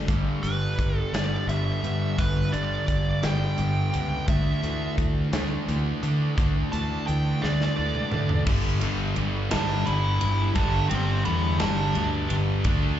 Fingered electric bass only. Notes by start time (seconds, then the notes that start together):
0.08 G1
0.43 G1
0.78 G1
1.12 G1
1.47 G1
1.83 G2
2.19 G1
2.53 G1
2.88 G1
3.24 G1
3.59 G1
3.95 C#2
4.28 D2
4.63 D2
4.98 D2
5.33 D2
5.68 D2
6.03 D3
6.38 D2
6.73 D2
7.09 D2
7.44 D2
7.79 D2
8.14 D3
8.47 G1
8.82 G1
9.18 G1
9.53 G1
9.88 G1
10.22 G1
10.56 G1
10.92 G1
11.27 E2
11.61 G1
11.97 D2
12.31 G1
12.65 D2